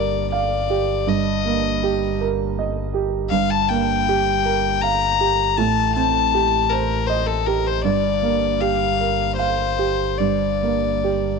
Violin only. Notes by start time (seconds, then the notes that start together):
Already playing: D5
0.31 D5
1.09 D#5
3.30 F5
3.50 A5
3.69 G5
4.82 A#5
5.57 A5
5.96 A5
6.70 A#4
7.06 C5
7.27 A4
7.46 A#4
7.67 C5
7.84 D5
8.61 F5
9.37 C5
10.18 D5